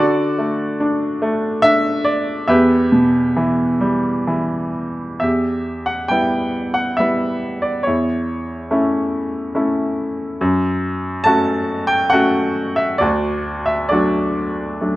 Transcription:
grand piano
Already playing: D3 F#4 A4 D5
0.38 A3
0.80 D4
1.22 A3
1.62 D4 E5
2.05 D5
2.48 E2 G4 B4 E5
2.92 B2
3.37 E3
3.81 G3
4.27 E3
5.20 E2 G4 E5
5.86 F#5
6.08 G3 B3 E4 G5
6.74 F#5
6.97 G3 B3 E4 E5
7.62 D5
7.83 E2 E4 C#5
8.71 A3 C#4 E4
9.55 A3 C#4 E4
10.41 F#2
11.24 A3 C#4 F#4 A5
11.87 G5
12.10 A3 C#4 F#4 F#5
12.76 E5
12.98 D2 F#4 D5
13.66 E5
13.89 F#3 A3 D4 F#4 D5
14.81 F#3 A3 D4

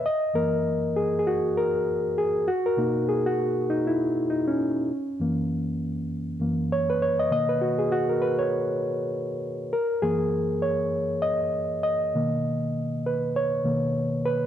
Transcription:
reed electric piano
0.06 D#5
0.34 F#2 E3 A#3 A#4
0.96 G#4
1.19 G#4
1.27 F#4
1.57 A#4
2.18 G#4
2.48 F#4
2.66 A#4
2.77 B2 A#3 D#4
3.09 G#4
3.26 F#4
3.70 D#4
3.87 E4
4.30 D#4
4.48 C#4
5.20 F#2 E3 A#3
6.40 F#2 E3 A#3
6.72 C#5
6.90 B4
7.02 C#5
7.19 D#5
7.31 B2 D#3 A#3 D#5
7.49 B4
7.61 F#4
7.79 G#4
7.92 F#4
8.09 A#4
8.22 B4
8.39 C#5
9.73 A#4
10.02 F#2 E3 A#3 G#4
10.62 C#5
11.22 D#5
11.83 D#5
12.15 B2 D#3 A#3
13.06 B4
13.36 C#5
13.65 B2 D#3 A#3
14.26 B4

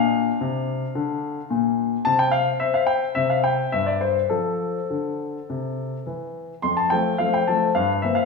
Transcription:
grand piano
Already playing: A#2 D4 F5
0.41 C3
0.95 D3
1.50 A#2
2.05 C3 C4 A5
2.19 G5
2.31 F5
2.60 C4 E5
2.74 F5
2.87 G5
3.15 C3 C4 E5
3.30 F5
3.44 G5
3.72 G2 E5
3.86 D5
4.01 C5
4.30 F3 C4 A4
4.90 D3
5.50 C3
6.06 E3
6.62 F2 C6
6.77 A5
6.90 F3 A3 C4 G5
7.18 F3 A3 C4 F5
7.34 G5
7.47 F3 A3 C4 A5
7.75 G2 F5
8.02 E3 A#3 C4 E5
8.15 F5

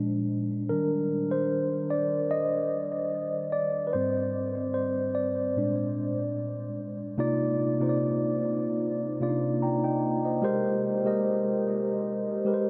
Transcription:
tine electric piano
Already playing: A#2 G#3 D4
0.69 D#3 G3 D4 A#4
1.31 C5
1.90 D5
2.31 D#5
3.52 D5
3.87 B4
3.93 G#2 G3 C4 C5
4.74 C5
5.15 D5
5.57 A#2 G#3 D4
7.18 C3 A#3 D#4 F4 D5
7.80 C3 A#3 D#4 F4 C5
7.89 D5
9.21 C3 A#3 D4 F4 D5
9.28 D#4
9.62 G5 A#5
9.84 D#5 G5
10.25 C5 D#5
10.42 G#3 G4 A#4 C5
11.05 G#3 G4 A#4 D#5
12.45 G#3 G4 A#4 B4
12.54 C5

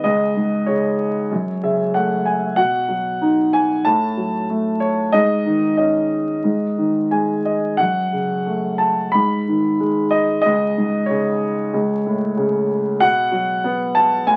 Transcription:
grand piano
0.04 C#2 D#5
0.36 G#2
0.66 C#3 C#5
1.32 F#2
1.63 C#3 E5
1.94 A3 F#5
2.25 G#5
2.56 B2 F#5
2.89 F#3
3.21 D#4
3.53 G#5
3.85 A2 A5
4.17 F#3
4.50 A3
4.80 C#5
5.12 G#2 D#5
5.46 D#3
5.77 C#4 D#5
6.44 G#2
6.77 D#3
7.11 G#3 G#5
7.45 D#5
7.77 F#2 F#5
8.13 C#3
8.46 A3
8.78 A5
9.12 G#2 B5
9.48 D#3
9.80 G#3
10.11 D#5
10.41 C#2 D#5
10.77 G#2
11.06 C#3 C#5
11.73 C#2
12.06 A2
12.37 C#3
13.00 B2 F#5
13.32 F#3
13.64 B3
13.95 A5
14.26 A2 G#5

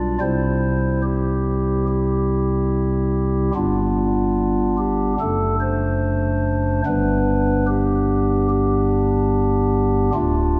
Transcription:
pipe organ
Already playing: B1 B2 G3 D4 F4 D5
0.20 C2 C3 G3 C4 E4 C5
1.03 G4
1.88 G4
3.55 G1 G2 G3 B3 D4 F4
4.79 G4
5.20 F#1 F#2 A3 D4 A4
5.60 C5
6.86 G1 G2 G3 B3 D4 B4
7.68 G4
8.50 G4
10.14 D1 D2 A3 D4 F4

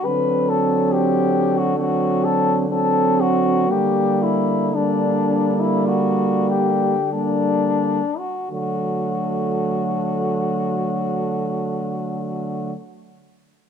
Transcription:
french horn
0.05 D3 F#3 C4 B4
0.50 A4
0.93 G4
1.58 F#4
1.78 F#3 C4 F#4
2.25 A4
2.70 F#3 C4 A4
3.21 F#4
3.69 D3 G3 A#3 G4
4.23 E4
4.74 G3 A#3 D4
5.60 E4
5.88 F#4
6.49 G4
7.12 G3 A#3 D4
8.19 F#4
8.52 D3 F#3 A3 F#4

